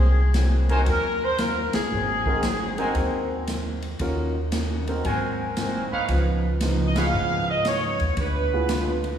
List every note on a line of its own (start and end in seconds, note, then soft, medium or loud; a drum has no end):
0.00 0.83 C2 medium
0.00 0.19 G#2 soft
0.00 0.20 F#3 soft
0.00 0.20 A#3 soft
0.00 0.21 C4 soft
0.00 0.68 G#4 medium
0.34 0.71 G#2 medium
0.34 0.72 F#3 medium
0.34 0.72 A#3 medium
0.34 0.73 C4 medium
0.34 snare medium
0.34 hi-hat pedal medium
0.34 ride medium
0.69 0.86 C4 medium
0.69 0.86 D#4 medium
0.69 0.82 F#4 medium
0.69 0.86 F#4 medium
0.69 0.82 A#4 medium
0.69 0.86 A#4 medium
0.69 0.82 C5 medium
0.69 0.82 G#5 medium
0.69 ride soft
0.86 1.70 D#2 medium
0.86 1.23 G#2 soft
0.86 1.24 F#3 soft
0.86 1.25 A#3 soft
0.86 1.25 C4 soft
0.86 1.21 A#4 medium
0.86 kick soft
0.86 ride medium
1.23 1.40 C5 medium
1.38 1.75 G#2 medium
1.38 1.76 F#3 medium
1.38 1.76 A#3 medium
1.38 1.77 C4 medium
1.38 1.74 A#4 medium
1.38 snare medium
1.38 hi-hat pedal medium
1.38 ride medium
1.73 3.27 G#4 medium
1.73 muted upright bass stroke soft
1.73 snare medium
1.73 ride medium
1.91 2.92 G#1 medium
1.91 2.28 G#2 soft
1.91 2.29 F#3 soft
1.91 2.29 A#3 medium
1.91 2.30 C4 medium
2.26 2.42 C4 medium
2.26 2.42 D#4 medium
2.26 2.43 F#4 medium
2.26 2.42 A#4 medium
2.26 kick soft
2.43 2.81 G#2 medium
2.43 2.81 F#3 medium
2.43 2.81 A#3 medium
2.43 2.82 C4 medium
2.43 snare medium
2.43 hi-hat pedal medium
2.43 ride medium
2.78 3.45 C4 medium
2.78 3.45 D#4 medium
2.78 2.90 F#4 medium
2.78 3.45 F#4 medium
2.78 3.45 A#4 medium
2.78 2.90 A#4 medium
2.78 2.90 C5 medium
2.78 2.90 G#5 medium
2.78 ride soft
2.95 3.96 D#2 medium
2.95 3.33 G#2 medium
2.95 3.33 F#3 soft
2.95 3.34 A#3 medium
2.95 kick soft
2.95 ride medium
2.99 3.34 C4 medium
3.47 3.85 G#2 medium
3.47 3.86 F#3 medium
3.47 3.86 A#3 medium
3.47 3.86 C4 medium
3.47 snare medium
3.47 hi-hat pedal medium
3.47 ride medium
3.82 ride soft
3.99 5.00 D#2 medium
3.99 4.37 D#3 medium
3.99 4.38 A#3 medium
3.99 4.32 C#4 medium
3.99 4.38 C#4 medium
3.99 4.32 F4 medium
3.99 4.32 F#4 soft
3.99 4.32 A#4 medium
3.99 kick soft
3.99 ride medium
4.04 4.39 F#4 medium
4.52 4.89 D#3 medium
4.52 4.90 A#3 medium
4.52 4.90 C#4 medium
4.52 4.90 F#4 medium
4.52 snare medium
4.52 hi-hat pedal medium
4.52 ride medium
4.87 5.03 C4 medium
4.87 5.03 D#4 medium
4.87 5.04 F#4 soft
4.87 5.04 A#4 medium
4.87 ride soft
5.04 5.88 G#1 medium
5.04 5.41 G#2 medium
5.04 5.42 F#3 soft
5.04 5.42 A#3 medium
5.04 5.43 C4 medium
5.04 5.85 F#4 medium
5.04 5.85 A#4 medium
5.04 5.85 C5 medium
5.04 5.85 G#5 medium
5.04 kick soft
5.04 ride medium
5.57 5.94 G#2 medium
5.57 5.94 F#3 medium
5.57 5.94 A#3 medium
5.57 5.95 C4 medium
5.57 snare medium
5.57 hi-hat pedal soft
5.57 ride medium
5.92 6.03 D#4 medium
5.92 6.04 B4 medium
5.92 6.03 C#5 medium
5.92 6.03 F5 medium
5.92 muted upright bass stroke soft
6.08 7.09 C#2 medium
6.08 6.45 C#3 medium
6.08 6.46 F3 medium
6.08 6.47 B3 medium
6.08 6.47 D#4 medium
6.08 kick soft
6.08 ride medium
6.60 6.98 C#3 medium
6.60 6.98 F3 medium
6.60 6.99 B3 medium
6.60 6.99 D#4 medium
6.60 snare medium
6.60 hi-hat pedal medium
6.60 ride medium
6.87 6.96 D#5 medium
6.96 7.63 B3 medium
6.96 7.08 D#4 medium
6.96 7.63 D#4 medium
6.96 7.63 F4 soft
6.96 7.63 G#4 medium
6.96 7.08 B4 medium
6.96 7.08 C#5 medium
6.96 7.48 F5 loud
6.96 7.08 F5 medium
6.96 snare medium
6.96 ride medium
7.13 7.96 G#2 medium
7.13 7.50 C#3 soft
7.13 7.50 F3 soft
7.13 7.51 B3 soft
7.13 7.52 D#4 medium
7.49 7.65 D#5 medium
7.65 8.02 C#3 medium
7.65 8.02 F3 medium
7.65 8.03 B3 medium
7.65 8.03 D#4 medium
7.65 8.15 C#5 medium
7.65 snare medium
7.65 hi-hat pedal medium
7.65 ride medium
8.00 8.16 D#2 medium
8.00 ride soft
8.17 9.18 D2 medium
8.17 8.54 D3 soft
8.17 8.55 G#3 soft
8.17 8.55 B3 medium
8.17 8.56 F4 soft
8.17 9.02 B4 medium
8.17 kick soft
8.17 ride medium
8.54 8.68 B3 medium
8.54 8.68 E4 medium
8.54 8.69 F4 soft
8.54 8.69 G#4 medium
8.68 9.06 D3 medium
8.68 9.06 G#3 medium
8.68 9.07 B3 medium
8.68 9.07 F4 medium
8.68 snare medium
8.68 hi-hat pedal medium
8.68 ride medium
9.04 ride soft